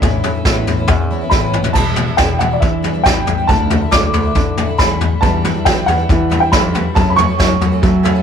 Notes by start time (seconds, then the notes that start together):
Already playing: D3 D4 E5
0.02 A1 A2 E3 B3 C#4 E4, kick, floor tom
0.23 E3 B3 C#4 E4, floor tom
0.35 B3 C#4 E4
0.45 A1 A2 E3 B3 C#4 E4, kick, snare
0.67 E3 B3 C#4 E4, floor tom
0.79 B3 C#4 E4
0.88 E2 E4, kick, floor tom
0.99 B3 C#4 E4
1.10 E2 E3 B3 C#4 E4
1.21 B3 C#4 E4
1.30 A1 A2 E3 B3 C#4 E4 B5, kick, snare
1.53 C#4, mid tom
1.62 B3 C#4 E4, floor tom
1.73 E1 E2 B2 E3 G3 D4 E4 A5, kick, floor tom, crash
1.96 E3 G3 B3 D4 E4, floor tom
2.07 E3 G3 D4 E4
2.17 E1 E2 B2 E3 G3 D4 E4 G5, kick, snare, floor tom
2.29 E3 G3 D4 E4
2.39 E1 E3 G3 D4 E4 F#5, floor tom
2.50 E3 G3 D4 E4 D5
2.60 E2 B2 E5, kick, floor tom
2.82 E3 G3 D4 E4, floor tom
2.94 E3 G3 D4 E4
3.04 A1 E2 B2 E3 G3 D4 E4 G5, kick, snare, floor tom
3.25 E3 G3 B3 D4 E4, floor tom
3.38 E3 G3 D4 E4
3.47 D2 D3 A3 D4 E4 A5, kick, floor tom
3.70 D3 A3 D4 E4, floor tom
3.82 A3 D4 E4
3.91 D2 D3 A3 D4 E4 D6, kick, snare, floor tom
4.03 A3 D4 E4
4.13 D2 D3 A3 D4 E4, floor tom
4.24 A3 D4 E4
4.35 A2 D3, kick, floor tom
4.57 D3 A3 D4 E4, floor tom
4.68 A3 D4 E4
4.78 E2 D3 A3 D4 E4 B5, kick, snare, floor tom
5.00 D2 D3 A3 D4 E4, floor tom
5.21 E2 B2 E3 G3 D4 B4 E5 A5, kick, floor tom
5.25 D4 E4
5.42 E3 G3 D4 B4 D5, floor tom
5.46 G3 D4 E4
5.55 E3 G3 D4 E4
5.65 E2 B2 E3 G3 D4 E4 B4 E5 G5, kick, snare, floor tom
5.76 E3 G3 D4 E4
5.86 E2 E3 G3 D4 E4 B4 E5 F#5, floor tom
5.97 E3 G3 D4 E4
6.09 E3 G3 D4 B4 E5, kick, floor tom
6.30 E3 G3 D4 E4 B4 E5, floor tom
6.40 G3 D4 E4 G5
6.45 E3
6.52 E2 F2 B2 E3 G3 D4 E4 B4 E5 B5, kick, snare, floor tom
6.74 E3 G3 D4 E4 B4 F#5, floor tom
6.94 F#1 F#2 C#3 E3 F#3 A3 C#4 F#4 A4 E5 A5, kick, floor tom
7.10 B5
7.15 E3 F#3 A3 C#4 F#4 A4 C#5 C#6, floor tom
7.28 E3 A3 C#4 F#4
7.37 F#2 C#3 E3 F#3 A3 C#4 F#4 A4 F#5, kick, snare, floor tom
7.49 E3 A3 C#4 F#4
7.60 F#2 E3 F#3 A3 C#4 F#4 A4 F#5, floor tom
7.72 E3 A3 C#4 F#4
7.81 F#3 C#4 A4 E5, kick, floor tom
8.03 E3 F#3 A3 C#4 F#4 A4 E5, floor tom
8.15 E3 A3 C#4 F#4